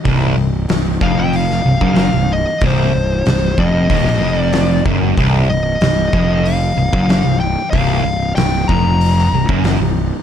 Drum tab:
HH |o---o---o---o---|o---o---o---o---|o---o---o---o---|o---o---o---o---|
SD |----o----o--o---|----o----o--o---|----o-------o---|----o----o--o---|
BD |o-----o----o----|o-----o-o-----o-|o-----o----o----|o-----o----o----|